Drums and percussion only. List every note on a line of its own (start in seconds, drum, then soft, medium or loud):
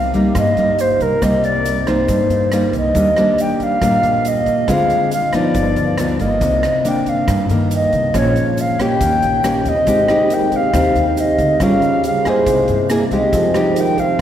0.14 kick soft
0.14 closed hi-hat soft
0.14 shaker soft
0.35 kick medium
0.35 cross-stick medium
0.35 closed hi-hat soft
0.35 shaker medium
0.57 closed hi-hat soft
0.57 shaker soft
0.79 closed hi-hat soft
0.79 shaker medium
1.00 kick soft
1.00 closed hi-hat soft
1.00 shaker soft
1.22 kick soft
1.22 cross-stick soft
1.22 closed hi-hat soft
1.22 shaker medium
1.44 closed hi-hat soft
1.44 shaker soft
1.65 closed hi-hat soft
1.65 shaker medium
1.87 kick soft
1.87 cross-stick medium
1.87 closed hi-hat soft
1.87 shaker soft
2.08 kick medium
2.08 closed hi-hat soft
2.08 shaker medium
2.30 closed hi-hat soft
2.30 shaker soft
2.52 cross-stick medium
2.52 closed hi-hat soft
2.52 shaker medium
2.73 kick soft
2.73 closed hi-hat soft
2.73 shaker soft
2.95 kick soft
2.95 closed hi-hat soft
2.95 shaker medium
3.16 cross-stick soft
3.16 closed hi-hat soft
3.16 shaker soft
3.38 closed hi-hat soft
3.38 shaker medium
3.60 kick soft
3.60 closed hi-hat soft
3.60 shaker soft
3.81 kick medium
3.81 cross-stick medium
3.81 closed hi-hat soft
3.81 shaker medium
4.03 closed hi-hat soft
4.03 shaker soft
4.25 closed hi-hat soft
4.25 shaker medium
4.46 kick soft
4.46 closed hi-hat soft
4.46 shaker soft
4.68 kick soft
4.68 cross-stick soft
4.68 closed hi-hat soft
4.68 shaker medium
4.90 closed hi-hat soft
4.90 shaker soft
5.11 closed hi-hat soft
5.11 shaker medium
5.33 kick soft
5.33 cross-stick medium
5.33 closed hi-hat soft
5.33 shaker soft
5.54 kick medium
5.54 closed hi-hat soft
5.54 shaker medium
5.76 closed hi-hat soft
5.76 shaker soft
5.98 cross-stick medium
5.98 closed hi-hat soft
5.98 shaker medium
6.19 kick soft
6.19 closed hi-hat soft
6.19 shaker soft
6.41 kick soft
6.41 closed hi-hat soft
6.41 shaker medium
6.63 cross-stick medium
6.63 closed hi-hat soft
6.63 shaker soft
6.85 closed hi-hat soft
6.85 shaker medium
7.06 kick soft
7.06 closed hi-hat soft
7.06 shaker soft
7.28 kick medium
7.28 cross-stick medium
7.28 closed hi-hat soft
7.28 shaker medium
7.49 closed hi-hat soft
7.49 shaker soft
7.71 closed hi-hat soft
7.71 shaker medium
7.93 kick soft
7.93 closed hi-hat soft
7.93 shaker soft
8.14 kick medium
8.14 cross-stick soft
8.14 closed hi-hat soft
8.14 shaker medium
8.36 closed hi-hat soft
8.36 shaker soft
8.58 closed hi-hat soft
8.58 shaker medium
8.79 kick soft
8.79 cross-stick medium
8.79 closed hi-hat soft
8.79 shaker soft
9.01 kick medium
9.01 closed hi-hat soft
9.01 shaker medium
9.22 closed hi-hat soft
9.22 shaker soft
9.44 cross-stick medium
9.44 closed hi-hat soft
9.44 shaker medium
9.65 kick soft
9.65 closed hi-hat soft
9.65 shaker soft
9.87 kick soft
9.87 closed hi-hat soft
9.87 shaker medium
10.08 cross-stick medium
10.08 closed hi-hat soft
10.08 shaker soft
10.30 closed hi-hat soft
10.30 shaker medium
10.52 kick soft
10.52 closed hi-hat soft
10.52 shaker soft
10.73 kick medium
10.73 cross-stick medium
10.73 closed hi-hat soft
10.73 shaker medium
10.95 closed hi-hat soft
10.95 shaker soft
11.17 closed hi-hat soft
11.17 shaker medium
11.38 kick soft
11.38 closed hi-hat soft
11.38 shaker soft
11.60 kick medium
11.60 cross-stick medium
11.60 closed hi-hat soft
11.60 shaker medium
11.82 closed hi-hat soft
11.82 shaker soft
12.04 closed hi-hat soft
12.04 shaker medium
12.25 kick soft
12.25 cross-stick medium
12.25 closed hi-hat soft
12.25 shaker soft
12.46 kick medium
12.46 closed hi-hat soft
12.46 shaker medium
12.68 closed hi-hat soft
12.68 shaker soft
12.89 cross-stick medium
12.89 closed hi-hat soft
12.89 shaker medium
13.11 kick soft
13.11 closed hi-hat soft
13.11 shaker soft
13.33 kick medium
13.33 closed hi-hat soft
13.33 shaker medium
13.54 cross-stick medium
13.54 closed hi-hat soft
13.54 shaker soft
13.76 closed hi-hat soft
13.76 shaker medium
13.98 kick soft
13.98 closed hi-hat soft
13.98 shaker soft